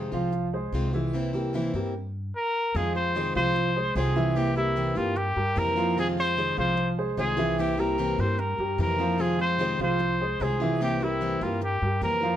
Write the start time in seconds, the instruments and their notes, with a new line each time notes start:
Already playing: steel-string acoustic guitar C3 D#3 G#3 C4 F4
0.12 upright bass C2, grand piano F3 F4 F5, steel-string acoustic guitar G#3 C4 F4
0.32 muted steel-string acoustic guitar stroke
0.53 grand piano G#3 G#4 C5
0.72 upright bass C2, steel-string acoustic guitar C3 D#3 G#3 C4 F4
0.93 grand piano E3 E4 E5, steel-string acoustic guitar G#3 C4 F4
1.13 steel-string acoustic guitar C3 E3 A#3 C4 E4
1.33 grand piano G3 G4 A#4, steel-string acoustic guitar A#3 C4 E4
1.53 steel-string acoustic guitar C3 E3 A#3 C4 E4, grand piano E3 E4 E5
1.73 upright bass G2, grand piano G3 G4 A#4, steel-string acoustic guitar A#3 C4 E4
2.36 trumpet A#4
2.75 upright bass F2, steel-string acoustic guitar C3 D#3 G#3 C4 F4, grand piano F3 F4 F5, trumpet G#4
2.95 steel-string acoustic guitar G#3 C4 F4, trumpet C5
3.15 steel-string acoustic guitar C3 D#3 G#3 C4 F4, grand piano G#3 G#4 C5
3.35 upright bass C2, grand piano F3 F4 F5, steel-string acoustic guitar G#3 C4 F4, trumpet C5
3.55 muted steel-string acoustic guitar stroke
3.76 grand piano G#3 G#4 C5
3.95 upright bass C2, steel-string acoustic guitar C3 D#3 G#3 C4 F4, grand piano G#3 G#4 C5, trumpet G#4
4.16 grand piano E3 E4 E5, steel-string acoustic guitar G#3 C4 F4
4.35 steel-string acoustic guitar C3 E3 A#3 C4 E4, trumpet G4
4.55 grand piano G3 G4 A#4, steel-string acoustic guitar A#3 C4 E4, trumpet E4
4.76 steel-string acoustic guitar C3 E3 A#3 C4 E4
4.95 upright bass G2, grand piano G3 G4 A#4, steel-string acoustic guitar A#3 C4 E4, trumpet F4
5.16 trumpet G4, muted steel-string acoustic guitar stroke
5.36 upright bass G2, grand piano G3 G4 A#4
5.55 upright bass F2, steel-string acoustic guitar C3 E3 A#3 C4 E4, trumpet A#4
5.76 grand piano F3 F4 F5, steel-string acoustic guitar A#3 C4 E4
5.97 steel-string acoustic guitar C3 D#3 G#3 C4 F4, grand piano F3 F4 F5, trumpet G#4
6.17 steel-string acoustic guitar G#3 C4 F4, trumpet C5
6.37 steel-string acoustic guitar C3 D#3 G#3 C4 F4, grand piano G#3 G#4 C5
6.57 upright bass C2, grand piano F3 F4 F5, steel-string acoustic guitar G#3 C4 F4, trumpet C5
6.77 muted steel-string acoustic guitar stroke
6.98 grand piano G#3 G#4 C5
7.17 upright bass C2, steel-string acoustic guitar C3 D#3 G#3 C4 F4, grand piano G#3 G#4 C5, trumpet G#4
7.37 grand piano E3 E4 E5, steel-string acoustic guitar G#3 C4 F4
7.58 steel-string acoustic guitar C3 E3 A#3 C4 E4, trumpet G4
7.77 grand piano G3 G4 A#4, steel-string acoustic guitar A#3 C4 E4, trumpet A#4
7.98 steel-string acoustic guitar C3 E3 A#3 C4 E4
8.18 upright bass G2, grand piano G3 G4 A#4, steel-string acoustic guitar A#3 C4 E4, trumpet C5
8.38 trumpet A#4, muted steel-string acoustic guitar stroke
8.59 upright bass G2, grand piano G3 G4 A#4
8.78 upright bass F2, steel-string acoustic guitar C3 E3 A#3 C4 E4, trumpet A#4
8.98 grand piano F3 F4 F5, steel-string acoustic guitar A#3 C4 E4
9.18 steel-string acoustic guitar C3 D#3 G#3 C4 F4, grand piano F3 F4 F5, trumpet G#4
9.39 steel-string acoustic guitar G#3 C4 F4, trumpet C5
9.59 steel-string acoustic guitar C3 D#3 G#3 C4 F4, grand piano G#3 G#4 C5
9.79 upright bass C2, grand piano F3 F4 F5, steel-string acoustic guitar G#3 C4 F4, trumpet C5
9.99 muted steel-string acoustic guitar stroke
10.21 grand piano G#3 G#4 C5
10.40 upright bass C2, steel-string acoustic guitar C3 D#3 G#3 C4 F4, grand piano G#3 G#4 C5, trumpet G#4
10.60 grand piano E3 E4 E5, steel-string acoustic guitar G#3 C4 F4
10.80 steel-string acoustic guitar C3 E3 A#3 C4 E4, trumpet G4
11.00 grand piano G3 G4 A#4, steel-string acoustic guitar A#3 C4 E4, trumpet E4
11.21 steel-string acoustic guitar C3 E3 A#3 C4 E4
11.41 upright bass G2, grand piano G3 G4 A#4, steel-string acoustic guitar A#3 C4 E4, trumpet F4
11.61 trumpet G4, muted steel-string acoustic guitar stroke
11.82 upright bass G2, grand piano G3 G4 A#4
12.02 upright bass F2, steel-string acoustic guitar C3 E3 A#3 C4 E4, trumpet A#4
12.21 grand piano F3 F4 F5, steel-string acoustic guitar A#3 C4 E4